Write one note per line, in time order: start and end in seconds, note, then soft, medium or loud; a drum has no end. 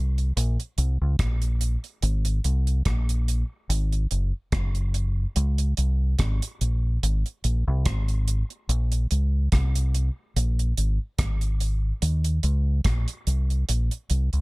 0.00 0.31 C2 medium
0.18 closed hi-hat soft
0.37 0.56 A#1 medium
0.37 closed hi-hat medium
0.60 closed hi-hat soft
0.78 0.98 C2 medium
0.78 closed hi-hat medium
1.01 1.17 C#2 medium
1.19 1.76 A#1 medium
1.19 kick loud
1.19 cross-stick loud
1.19 closed hi-hat loud
1.42 closed hi-hat soft
1.61 closed hi-hat medium
1.84 closed hi-hat soft
2.02 2.39 G#1 loud
2.02 closed hi-hat medium
2.25 closed hi-hat medium
2.44 2.81 C2 medium
2.44 closed hi-hat medium
2.67 closed hi-hat soft
2.85 3.43 A#1 medium
2.85 kick medium
2.85 cross-stick loud
2.85 closed hi-hat medium
3.09 closed hi-hat medium
3.28 closed hi-hat medium
3.69 4.06 G#1 loud
3.69 closed hi-hat medium
3.92 closed hi-hat soft
4.11 4.31 F#1 medium
4.11 closed hi-hat medium
4.52 5.25 F#1 medium
4.52 kick loud
4.52 cross-stick loud
4.52 closed hi-hat medium
4.75 closed hi-hat soft
4.94 closed hi-hat medium
5.36 5.72 C#2 medium
5.36 closed hi-hat medium
5.58 closed hi-hat medium
5.77 6.14 C2 medium
5.77 closed hi-hat medium
6.19 6.39 G#1 medium
6.19 kick medium
6.19 cross-stick loud
6.19 closed hi-hat medium
6.42 closed hi-hat medium
6.61 6.97 A#1 medium
6.61 closed hi-hat medium
7.03 7.23 G#1 medium
7.03 closed hi-hat medium
7.26 closed hi-hat soft
7.44 7.64 A#1 medium
7.44 closed hi-hat medium
7.68 7.83 C2 medium
7.86 8.42 G#1 medium
7.86 kick loud
7.86 cross-stick loud
7.86 closed hi-hat medium
8.08 closed hi-hat soft
8.28 closed hi-hat medium
8.50 closed hi-hat soft
8.69 9.05 A#1 medium
8.69 closed hi-hat medium
8.92 closed hi-hat medium
9.11 9.47 C#2 medium
9.11 closed hi-hat medium
9.52 10.09 C2 medium
9.52 kick medium
9.52 cross-stick loud
9.52 closed hi-hat medium
9.75 closed hi-hat medium
9.95 closed hi-hat medium
10.36 10.72 A#1 medium
10.36 closed hi-hat medium
10.59 closed hi-hat soft
10.77 10.97 G#1 medium
10.77 closed hi-hat medium
11.19 11.91 G#1 medium
11.19 kick loud
11.19 cross-stick loud
11.19 closed hi-hat loud
11.41 closed hi-hat soft
11.60 closed hi-hat medium
12.02 12.38 D#2 medium
12.02 closed hi-hat medium
12.24 closed hi-hat medium
12.43 12.80 C#2 medium
12.43 closed hi-hat medium
12.85 13.05 A#1 medium
12.85 kick loud
12.85 cross-stick loud
12.85 closed hi-hat medium
13.08 closed hi-hat medium
13.27 13.63 C2 medium
13.27 closed hi-hat medium
13.50 closed hi-hat soft
13.69 13.89 A#1 medium
13.69 closed hi-hat medium
13.91 closed hi-hat soft
14.10 14.30 C2 medium
14.10 closed hi-hat medium
14.33 14.41 C#2 medium
14.33 closed hi-hat soft